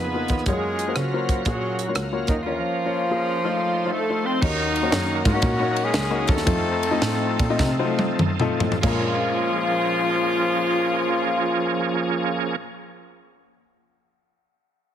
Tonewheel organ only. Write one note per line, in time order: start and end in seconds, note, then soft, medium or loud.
0.00 0.45 F3 medium
0.00 0.45 D#4 medium
0.00 0.45 G#4 medium
0.00 0.45 B4 medium
0.48 2.42 F#3 medium
0.48 2.42 C#4 medium
0.48 2.42 A#4 medium
0.48 2.42 F5 soft
2.46 3.43 F3 medium
2.46 3.43 A#3 soft
2.46 3.43 C#4 soft
2.46 3.42 A#4 medium
3.44 4.41 F3 medium
3.44 4.41 D#4 medium
3.44 4.41 A4 medium
3.44 4.41 C5 medium
4.44 6.43 F#3 medium
4.44 6.43 A#3 medium
4.44 6.43 C#4 medium
4.44 6.43 D#4 medium
4.44 6.44 A#4 medium
6.46 8.79 F3 medium
6.46 8.79 A3 medium
6.46 8.79 C4 medium
6.46 8.79 D#4 medium
6.46 8.79 A4 medium
8.81 12.56 F3 medium
8.81 12.56 A#3 medium
8.81 12.56 C#4 medium
8.81 12.55 G#4 medium